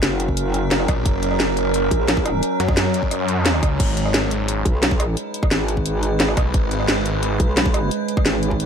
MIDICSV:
0, 0, Header, 1, 5, 480
1, 0, Start_track
1, 0, Key_signature, 5, "minor"
1, 0, Tempo, 342857
1, 1478, Time_signature, 4, 2, 24, 8
1, 12121, End_track
2, 0, Start_track
2, 0, Title_t, "Synth drone"
2, 0, Program_c, 0, 95
2, 0, Note_on_c, 0, 54, 81
2, 0, Note_on_c, 0, 61, 74
2, 0, Note_on_c, 0, 70, 90
2, 5262, Note_off_c, 0, 61, 0
2, 5262, Note_off_c, 0, 70, 0
2, 5263, Note_off_c, 0, 54, 0
2, 5318, Note_on_c, 0, 56, 78
2, 5318, Note_on_c, 0, 63, 74
2, 5318, Note_on_c, 0, 71, 88
2, 9120, Note_off_c, 0, 63, 0
2, 9157, Note_on_c, 0, 61, 73
2, 12121, Note_off_c, 0, 56, 0
2, 12121, Note_off_c, 0, 61, 0
2, 12121, Note_off_c, 0, 71, 0
2, 12121, End_track
3, 0, Start_track
3, 0, Title_t, "Detuned saw bass"
3, 0, Program_c, 1, 39
3, 1239, Note_on_c, 1, 34, 99
3, 1459, Note_off_c, 1, 34, 0
3, 1479, Note_on_c, 1, 30, 99
3, 2659, Note_off_c, 1, 30, 0
3, 3638, Note_on_c, 1, 42, 100
3, 5299, Note_off_c, 1, 42, 0
3, 5318, Note_on_c, 1, 32, 98
3, 6499, Note_off_c, 1, 32, 0
3, 8918, Note_on_c, 1, 35, 100
3, 9139, Note_off_c, 1, 35, 0
3, 9158, Note_on_c, 1, 32, 95
3, 10339, Note_off_c, 1, 32, 0
3, 12121, End_track
4, 0, Start_track
4, 0, Title_t, "Wobble bass"
4, 0, Program_c, 2, 39
4, 38, Note_on_c, 2, 30, 100
4, 1219, Note_off_c, 2, 30, 0
4, 2678, Note_on_c, 2, 34, 100
4, 3379, Note_off_c, 2, 34, 0
4, 6518, Note_on_c, 2, 35, 97
4, 7219, Note_off_c, 2, 35, 0
4, 7719, Note_on_c, 2, 32, 101
4, 8899, Note_off_c, 2, 32, 0
4, 10358, Note_on_c, 2, 35, 97
4, 11059, Note_off_c, 2, 35, 0
4, 11559, Note_on_c, 2, 32, 99
4, 12121, Note_off_c, 2, 32, 0
4, 12121, End_track
5, 0, Start_track
5, 0, Title_t, "Drums"
5, 37, Note_on_c, 9, 38, 117
5, 37, Note_on_c, 9, 42, 93
5, 177, Note_off_c, 9, 38, 0
5, 177, Note_off_c, 9, 42, 0
5, 278, Note_on_c, 9, 42, 68
5, 398, Note_on_c, 9, 36, 60
5, 418, Note_off_c, 9, 42, 0
5, 518, Note_on_c, 9, 42, 92
5, 538, Note_off_c, 9, 36, 0
5, 658, Note_off_c, 9, 42, 0
5, 758, Note_on_c, 9, 42, 67
5, 898, Note_off_c, 9, 42, 0
5, 998, Note_on_c, 9, 38, 116
5, 998, Note_on_c, 9, 42, 94
5, 1118, Note_on_c, 9, 37, 46
5, 1138, Note_off_c, 9, 38, 0
5, 1138, Note_off_c, 9, 42, 0
5, 1238, Note_off_c, 9, 37, 0
5, 1238, Note_on_c, 9, 36, 104
5, 1238, Note_on_c, 9, 37, 46
5, 1238, Note_on_c, 9, 42, 64
5, 1378, Note_off_c, 9, 36, 0
5, 1378, Note_off_c, 9, 37, 0
5, 1378, Note_off_c, 9, 42, 0
5, 1478, Note_on_c, 9, 36, 114
5, 1478, Note_on_c, 9, 42, 95
5, 1618, Note_off_c, 9, 36, 0
5, 1618, Note_off_c, 9, 42, 0
5, 1718, Note_on_c, 9, 42, 69
5, 1838, Note_on_c, 9, 37, 36
5, 1858, Note_off_c, 9, 42, 0
5, 1958, Note_on_c, 9, 38, 114
5, 1958, Note_on_c, 9, 42, 95
5, 1978, Note_off_c, 9, 37, 0
5, 2098, Note_off_c, 9, 38, 0
5, 2098, Note_off_c, 9, 42, 0
5, 2198, Note_on_c, 9, 42, 70
5, 2338, Note_off_c, 9, 42, 0
5, 2438, Note_on_c, 9, 42, 96
5, 2578, Note_off_c, 9, 42, 0
5, 2678, Note_on_c, 9, 36, 100
5, 2678, Note_on_c, 9, 42, 70
5, 2818, Note_off_c, 9, 36, 0
5, 2818, Note_off_c, 9, 42, 0
5, 2918, Note_on_c, 9, 38, 112
5, 2918, Note_on_c, 9, 42, 94
5, 3038, Note_on_c, 9, 36, 105
5, 3058, Note_off_c, 9, 38, 0
5, 3058, Note_off_c, 9, 42, 0
5, 3158, Note_on_c, 9, 37, 47
5, 3158, Note_on_c, 9, 42, 68
5, 3178, Note_off_c, 9, 36, 0
5, 3298, Note_off_c, 9, 37, 0
5, 3298, Note_off_c, 9, 42, 0
5, 3399, Note_on_c, 9, 42, 96
5, 3539, Note_off_c, 9, 42, 0
5, 3638, Note_on_c, 9, 42, 70
5, 3758, Note_on_c, 9, 36, 105
5, 3758, Note_on_c, 9, 37, 35
5, 3778, Note_off_c, 9, 42, 0
5, 3878, Note_on_c, 9, 38, 115
5, 3878, Note_on_c, 9, 42, 98
5, 3898, Note_off_c, 9, 36, 0
5, 3898, Note_off_c, 9, 37, 0
5, 4018, Note_off_c, 9, 38, 0
5, 4018, Note_off_c, 9, 42, 0
5, 4118, Note_on_c, 9, 42, 73
5, 4238, Note_on_c, 9, 36, 61
5, 4258, Note_off_c, 9, 42, 0
5, 4358, Note_on_c, 9, 37, 34
5, 4358, Note_on_c, 9, 42, 100
5, 4378, Note_off_c, 9, 36, 0
5, 4498, Note_off_c, 9, 37, 0
5, 4498, Note_off_c, 9, 42, 0
5, 4598, Note_on_c, 9, 42, 69
5, 4738, Note_off_c, 9, 42, 0
5, 4838, Note_on_c, 9, 38, 118
5, 4838, Note_on_c, 9, 42, 98
5, 4959, Note_on_c, 9, 37, 48
5, 4978, Note_off_c, 9, 38, 0
5, 4978, Note_off_c, 9, 42, 0
5, 5078, Note_on_c, 9, 36, 104
5, 5079, Note_off_c, 9, 37, 0
5, 5079, Note_on_c, 9, 37, 48
5, 5079, Note_on_c, 9, 42, 70
5, 5218, Note_off_c, 9, 36, 0
5, 5219, Note_off_c, 9, 37, 0
5, 5219, Note_off_c, 9, 42, 0
5, 5318, Note_on_c, 9, 36, 122
5, 5318, Note_on_c, 9, 42, 96
5, 5318, Note_on_c, 9, 49, 75
5, 5458, Note_off_c, 9, 36, 0
5, 5458, Note_off_c, 9, 42, 0
5, 5458, Note_off_c, 9, 49, 0
5, 5558, Note_on_c, 9, 42, 68
5, 5678, Note_on_c, 9, 37, 37
5, 5698, Note_off_c, 9, 42, 0
5, 5798, Note_on_c, 9, 38, 121
5, 5798, Note_on_c, 9, 42, 97
5, 5818, Note_off_c, 9, 37, 0
5, 5938, Note_off_c, 9, 38, 0
5, 5938, Note_off_c, 9, 42, 0
5, 6038, Note_on_c, 9, 42, 72
5, 6178, Note_off_c, 9, 42, 0
5, 6278, Note_on_c, 9, 42, 98
5, 6418, Note_off_c, 9, 42, 0
5, 6518, Note_on_c, 9, 36, 112
5, 6518, Note_on_c, 9, 42, 69
5, 6658, Note_off_c, 9, 36, 0
5, 6658, Note_off_c, 9, 42, 0
5, 6758, Note_on_c, 9, 38, 121
5, 6758, Note_on_c, 9, 42, 97
5, 6878, Note_on_c, 9, 36, 108
5, 6898, Note_off_c, 9, 38, 0
5, 6898, Note_off_c, 9, 42, 0
5, 6998, Note_on_c, 9, 37, 51
5, 6998, Note_on_c, 9, 42, 69
5, 7018, Note_off_c, 9, 36, 0
5, 7138, Note_off_c, 9, 37, 0
5, 7138, Note_off_c, 9, 42, 0
5, 7238, Note_on_c, 9, 42, 92
5, 7378, Note_off_c, 9, 42, 0
5, 7479, Note_on_c, 9, 42, 66
5, 7598, Note_on_c, 9, 36, 113
5, 7598, Note_on_c, 9, 37, 39
5, 7619, Note_off_c, 9, 42, 0
5, 7718, Note_on_c, 9, 38, 122
5, 7718, Note_on_c, 9, 42, 94
5, 7738, Note_off_c, 9, 36, 0
5, 7738, Note_off_c, 9, 37, 0
5, 7858, Note_off_c, 9, 38, 0
5, 7858, Note_off_c, 9, 42, 0
5, 7958, Note_on_c, 9, 42, 68
5, 8079, Note_on_c, 9, 36, 64
5, 8098, Note_off_c, 9, 42, 0
5, 8198, Note_on_c, 9, 42, 96
5, 8219, Note_off_c, 9, 36, 0
5, 8338, Note_off_c, 9, 42, 0
5, 8439, Note_on_c, 9, 42, 67
5, 8579, Note_off_c, 9, 42, 0
5, 8678, Note_on_c, 9, 38, 122
5, 8678, Note_on_c, 9, 42, 95
5, 8799, Note_on_c, 9, 37, 50
5, 8818, Note_off_c, 9, 38, 0
5, 8818, Note_off_c, 9, 42, 0
5, 8918, Note_off_c, 9, 37, 0
5, 8918, Note_on_c, 9, 36, 113
5, 8918, Note_on_c, 9, 37, 51
5, 8918, Note_on_c, 9, 42, 67
5, 9058, Note_off_c, 9, 36, 0
5, 9058, Note_off_c, 9, 37, 0
5, 9058, Note_off_c, 9, 42, 0
5, 9158, Note_on_c, 9, 36, 127
5, 9158, Note_on_c, 9, 42, 93
5, 9298, Note_off_c, 9, 36, 0
5, 9298, Note_off_c, 9, 42, 0
5, 9398, Note_on_c, 9, 42, 64
5, 9518, Note_on_c, 9, 37, 37
5, 9538, Note_off_c, 9, 42, 0
5, 9638, Note_on_c, 9, 38, 124
5, 9638, Note_on_c, 9, 42, 93
5, 9658, Note_off_c, 9, 37, 0
5, 9778, Note_off_c, 9, 38, 0
5, 9778, Note_off_c, 9, 42, 0
5, 9878, Note_on_c, 9, 42, 66
5, 10018, Note_off_c, 9, 42, 0
5, 10118, Note_on_c, 9, 42, 95
5, 10258, Note_off_c, 9, 42, 0
5, 10358, Note_on_c, 9, 36, 113
5, 10358, Note_on_c, 9, 42, 65
5, 10498, Note_off_c, 9, 36, 0
5, 10498, Note_off_c, 9, 42, 0
5, 10598, Note_on_c, 9, 38, 123
5, 10598, Note_on_c, 9, 42, 90
5, 10718, Note_on_c, 9, 36, 118
5, 10738, Note_off_c, 9, 38, 0
5, 10738, Note_off_c, 9, 42, 0
5, 10838, Note_on_c, 9, 37, 50
5, 10838, Note_on_c, 9, 42, 65
5, 10858, Note_off_c, 9, 36, 0
5, 10978, Note_off_c, 9, 37, 0
5, 10978, Note_off_c, 9, 42, 0
5, 11078, Note_on_c, 9, 42, 91
5, 11218, Note_off_c, 9, 42, 0
5, 11319, Note_on_c, 9, 42, 62
5, 11438, Note_on_c, 9, 36, 113
5, 11439, Note_on_c, 9, 37, 36
5, 11459, Note_off_c, 9, 42, 0
5, 11559, Note_on_c, 9, 38, 124
5, 11559, Note_on_c, 9, 42, 91
5, 11578, Note_off_c, 9, 36, 0
5, 11579, Note_off_c, 9, 37, 0
5, 11699, Note_off_c, 9, 38, 0
5, 11699, Note_off_c, 9, 42, 0
5, 11799, Note_on_c, 9, 42, 64
5, 11918, Note_on_c, 9, 36, 65
5, 11939, Note_off_c, 9, 42, 0
5, 12039, Note_on_c, 9, 42, 91
5, 12058, Note_off_c, 9, 36, 0
5, 12121, Note_off_c, 9, 42, 0
5, 12121, End_track
0, 0, End_of_file